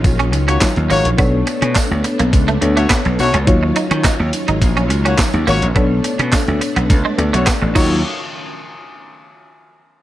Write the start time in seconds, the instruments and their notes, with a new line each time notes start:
Already playing: string machine D#3 F#3 C#4 F4, fm electric piano F#3 D#4 F4 C#5
0.04 slap bass A#1, kick, closed hi-hat, tambourine
0.19 clean electric guitar C#4, closed hi-hat
0.32 slap bass C#2, muted clean electric guitar stroke, closed hi-hat, tambourine
0.48 horn section A#3 F#4 C#5, clean electric guitar C#4, closed hi-hat
0.61 fm electric piano F#3 D#4 F4 C#5, kick, snare, clap, closed hi-hat, tambourine
0.76 slap bass D#2, closed hi-hat
0.90 slap bass G#1, horn section A#3 F#4 C#5, clean electric guitar A#3, open hi-hat, tambourine
1.05 slap bass A#1, closed hi-hat
1.18 slap bass B1, string machine A3 B3 D4, fm electric piano B3 D4 A4 C#5, clean electric guitar B3, kick, closed hi-hat, tambourine
1.47 muted clean electric guitar stroke, closed hi-hat, tambourine
1.62 slap bass B2, clean electric guitar C#4, closed hi-hat
1.75 clean electric guitar D4, kick, snare, clap, closed hi-hat, tambourine
1.91 slap bass D2
2.04 muted clean electric guitar stroke, closed hi-hat, tambourine
2.19 slap bass B1, clean electric guitar A#3, closed hi-hat
2.33 slap bass C#2, kick, closed hi-hat, tambourine
2.48 clean electric guitar A3, closed hi-hat
2.61 slap bass D2, fm electric piano B3 D4 A4 C#5, muted clean electric guitar stroke, closed hi-hat
2.77 horn section A3 F#4 C#5, clean electric guitar A3, closed hi-hat
2.90 clean electric guitar B3, kick, snare, clap, closed hi-hat, tambourine
3.05 slap bass B1, muted clean electric guitar stroke, closed hi-hat
3.19 slap bass B1, horn section A3 F#4 C#5, open hi-hat, tambourine
3.34 slap bass C#2, clean electric guitar C#4, closed hi-hat
3.47 slap bass D#2, string machine D#3 F#3 C#4 F4, fm electric piano F#3 D#4 F4 C#5, kick, closed hi-hat
3.63 muted clean electric guitar stroke
3.76 clean electric guitar D#4, closed hi-hat, tambourine
3.91 slap bass D#3, clean electric guitar C#4, closed hi-hat
4.04 clean electric guitar D#4, kick, snare, clap, closed hi-hat, tambourine
4.20 slap bass D#2, muted clean electric guitar stroke
4.33 closed hi-hat, tambourine
4.48 slap bass G#1, clean electric guitar D#4, closed hi-hat
4.62 slap bass A#1, kick, closed hi-hat, tambourine
4.77 clean electric guitar C#4, closed hi-hat
4.90 slap bass C#2, muted clean electric guitar stroke, closed hi-hat, tambourine
5.05 horn section A#3 F#4 C#5, clean electric guitar C#4, closed hi-hat
5.18 kick, snare, clap, closed hi-hat, tambourine
5.34 slap bass D#2, closed hi-hat
5.47 slap bass G#1, horn section A#3 F#4 C#5, clean electric guitar A#3, open hi-hat, tambourine
5.62 slap bass A#1, closed hi-hat
5.75 slap bass B1, string machine A3 B3 D4, fm electric piano B3 D4 A4 C#5, clean electric guitar B3, kick, closed hi-hat
6.04 muted clean electric guitar stroke, closed hi-hat, tambourine
6.19 slap bass B2, clean electric guitar C#4, closed hi-hat
6.33 clean electric guitar D4, kick, snare, clap, closed hi-hat, tambourine
6.48 slap bass D2, closed hi-hat
6.61 muted clean electric guitar stroke, closed hi-hat, tambourine
6.76 slap bass B1, clean electric guitar B3, closed hi-hat
6.90 slap bass C#2, kick, closed hi-hat, tambourine
7.05 clean electric guitar G#3
7.18 slap bass D2, fm electric piano B3 D4 A4 D5, muted clean electric guitar stroke, closed hi-hat
7.33 slap bass B1, clean electric guitar A3, horn section A3 F#4 C#5, closed hi-hat
7.46 clean electric guitar B3, kick, snare, clap, closed hi-hat, tambourine
7.62 slap bass A1, muted clean electric guitar stroke
7.75 slap bass D#2, string machine D#3 C#4 F4 F#4, fm electric piano F#3 D#4 F4 C#5, horn section A#3 F#4 C#5, clean electric guitar D#4, kick, crash, tambourine